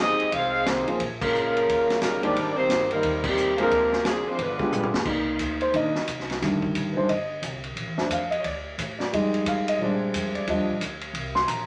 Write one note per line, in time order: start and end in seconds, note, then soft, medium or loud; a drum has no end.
0.00 0.16 F2 medium
0.00 0.31 G#3 medium
0.00 0.30 C4 medium
0.00 0.32 C4 medium
0.00 0.31 D#4 medium
0.00 0.32 G4 medium
0.00 0.32 G#4 medium
0.00 0.32 D#5 loud
0.20 muted upright bass stroke soft
0.20 ride soft
0.32 0.84 C2 medium
0.32 0.65 G#3 medium
0.32 0.64 C4 medium
0.32 0.67 D#4 medium
0.32 0.66 F4 medium
0.32 0.67 G#4 medium
0.32 0.67 C5 medium
0.32 0.67 F5 loud
0.32 ride medium
0.65 0.87 D#3 medium
0.65 0.87 G#3 medium
0.65 0.89 G#3 medium
0.65 0.87 C4 medium
0.65 0.89 G4 medium
0.65 0.89 C5 medium
0.65 snare medium
0.65 hi-hat pedal medium
0.65 ride medium
0.70 0.89 D#4 medium
0.88 0.99 F3 medium
0.88 0.99 A#3 medium
0.88 0.99 C4 medium
0.88 0.99 C#4 medium
0.88 0.99 G#4 medium
0.88 muted upright bass stroke soft
0.88 ride soft
1.00 1.64 A#1 medium
1.00 ride medium
1.21 1.98 C#3 medium
1.21 1.98 F3 medium
1.21 1.66 G#3 medium
1.21 1.98 A#3 medium
1.21 1.98 C#4 medium
1.21 1.98 F4 medium
1.21 1.99 A#4 loud
1.21 kick medium
1.21 crash medium
1.35 hi-hat pedal medium
1.57 ride soft
1.68 2.19 D#2 medium
1.68 ride medium
1.90 snare soft
1.90 ride medium
2.01 2.22 C#3 medium
2.01 2.20 G3 medium
2.01 2.22 G3 medium
2.01 2.22 A#3 medium
2.01 2.22 C#4 medium
2.01 2.22 D#4 medium
2.01 2.22 A#4 medium
2.01 snare medium
2.01 hi-hat pedal medium
2.01 ride medium
2.21 2.35 D#2 medium
2.21 2.54 D#3 loud
2.21 2.54 G3 loud
2.21 2.34 G#3 medium
2.21 2.34 A#3 medium
2.21 2.34 C4 medium
2.21 2.57 C4 medium
2.21 2.56 D4 loud
2.21 2.34 D#4 medium
2.21 2.34 G4 medium
2.21 2.56 G4 loud
2.21 2.58 A#4 medium
2.21 2.57 D5 loud
2.21 ride medium
2.35 2.67 G#1 medium
2.35 ride medium
2.55 2.88 D#3 medium
2.55 2.87 G3 medium
2.55 2.88 A#3 medium
2.55 2.87 C4 medium
2.55 2.88 D#4 medium
2.55 2.88 G4 medium
2.55 2.88 C5 loud
2.69 3.01 G1 medium
2.69 snare medium
2.69 hi-hat pedal soft
2.69 ride medium
2.91 3.22 D#3 medium
2.91 3.22 G3 medium
2.91 3.23 G3 medium
2.91 3.23 A#3 medium
2.91 3.23 C4 medium
2.91 3.23 D#4 medium
2.91 3.23 A#4 medium
2.91 ride soft
3.03 3.67 D#2 medium
3.03 ride medium
3.23 3.56 C3 medium
3.23 3.58 D#3 medium
3.23 3.58 G3 medium
3.23 3.60 A#3 medium
3.23 kick loud
3.23 crash medium
3.27 3.60 D#3 medium
3.27 3.60 C4 medium
3.27 3.60 G4 medium
3.37 hi-hat pedal medium
3.57 4.01 C3 medium
3.57 4.01 F3 medium
3.57 3.70 G#3 medium
3.57 4.01 A#3 medium
3.57 3.70 C4 medium
3.57 3.70 D4 medium
3.57 3.70 F4 medium
3.57 3.70 G#4 medium
3.57 ride soft
3.61 4.03 G#3 medium
3.61 4.03 D4 medium
3.61 4.03 F4 medium
3.61 4.03 A#4 medium
3.70 4.35 D2 medium
3.70 ride medium
3.93 snare soft
4.04 4.24 C3 medium
4.04 4.24 F3 medium
4.04 4.24 G#3 medium
4.04 4.26 D4 medium
4.04 4.26 G#4 medium
4.04 snare medium
4.04 hi-hat pedal medium
4.04 ride medium
4.08 4.26 F3 medium
4.08 4.26 C4 medium
4.25 4.38 F3 medium
4.25 4.38 G#3 medium
4.25 4.40 G#3 medium
4.25 4.38 C4 medium
4.25 4.40 D4 medium
4.25 4.40 F4 medium
4.25 4.40 C5 medium
4.38 4.90 G1 medium
4.38 4.94 D3 medium
4.38 4.94 F3 medium
4.38 4.95 G#3 medium
4.38 4.94 B3 medium
4.38 4.95 D4 medium
4.38 4.95 F4 medium
4.38 4.95 B4 medium
4.38 ride medium
4.59 5.04 G#3 medium
4.59 5.04 B3 medium
4.59 5.04 D4 medium
4.59 5.04 F4 medium
4.59 5.04 G4 medium
4.59 kick medium
4.72 hi-hat pedal medium
4.72 mid tom medium
4.83 mid tom medium
4.92 5.05 G2 medium
4.92 snare medium
5.05 5.39 C2 medium
5.05 5.73 A#3 soft
5.05 6.37 D#4 soft
5.05 6.38 D5 soft
5.05 kick medium
5.05 crash medium
5.39 5.72 D2 medium
5.39 hi-hat pedal medium
5.39 ride medium
5.61 5.74 C5 medium
5.61 ride soft
5.73 5.93 A#1 medium
5.73 5.93 D#3 soft
5.73 5.93 A#3 soft
5.73 5.93 D4 soft
5.73 6.06 D#5 medium
5.73 ride medium
5.94 muted upright bass stroke soft
5.94 snare soft
6.08 6.40 C2 medium
6.08 hi-hat pedal medium
6.08 ride medium
6.20 snare soft
6.30 snare soft
6.30 ride soft
6.41 6.74 F1 medium
6.41 7.73 D3 medium
6.41 6.95 D#3 soft
6.41 6.95 G3 soft
6.41 6.95 A3 soft
6.41 snare soft
6.41 ride medium
6.62 kick medium
6.75 6.95 A1 medium
6.75 hi-hat pedal medium
6.75 ride medium
6.93 6.95 B4 soft
6.93 muted upright bass stroke soft
6.97 7.08 D#3 soft
6.97 7.08 G3 soft
6.97 7.08 A3 soft
6.97 7.08 D4 soft
6.97 7.09 C5 medium
7.09 7.42 G1 medium
7.09 7.40 D#5 medium
7.09 ride medium
7.42 7.75 C2 loud
7.42 hi-hat pedal medium
7.42 ride medium
7.64 ride soft
7.75 7.87 A#1 medium
7.75 ride medium
7.87 7.98 A1 medium
7.98 8.08 F1 medium
7.98 8.18 A3 soft
7.98 8.18 C4 soft
7.98 8.18 D4 medium
7.98 snare soft
8.09 8.42 F2 medium
8.09 8.32 F5 medium
8.09 hi-hat pedal medium
8.09 ride medium
8.31 8.43 D#5 medium
8.31 ride medium
8.40 8.43 C#5 medium
8.40 8.95 D5 medium
8.44 8.77 D2 medium
8.44 ride medium
8.78 9.11 A2 medium
8.78 hi-hat pedal medium
8.78 ride medium
8.99 9.11 D5 medium
8.99 snare soft
9.12 9.45 F2 medium
9.12 9.76 G3 medium
9.12 9.76 G#3 soft
9.12 9.77 D#4 medium
9.12 9.44 D#5 medium
9.12 ride medium
9.34 ride medium
9.45 9.78 G#2 medium
9.45 9.67 F5 medium
9.45 hi-hat pedal medium
9.45 ride medium
9.68 9.80 D#5 medium
9.68 ride medium
9.79 10.12 A#2 medium
9.79 10.44 G3 soft
9.79 10.45 G#3 soft
9.79 10.44 C4 soft
9.79 10.45 D4 medium
9.79 10.32 D5 medium
10.14 10.33 F2 medium
10.14 hi-hat pedal medium
10.14 ride medium
10.35 10.47 D5 medium
10.35 muted upright bass stroke soft
10.35 ride soft
10.47 10.58 D#2 medium
10.47 10.72 F3 soft
10.47 10.73 G3 soft
10.47 10.73 D4 medium
10.47 10.80 D#5 medium
10.47 ride medium
10.58 10.68 D2 medium
10.69 10.79 A#1 medium
10.80 11.13 D2 medium
10.80 hi-hat pedal medium
10.80 ride medium
11.01 ride soft
11.13 11.46 C2 medium
11.13 ride medium
11.35 11.47 C6 medium
11.35 snare soft
11.48 11.66 A#1 medium
11.48 11.66 A#5 medium
11.48 hi-hat pedal medium
11.48 ride medium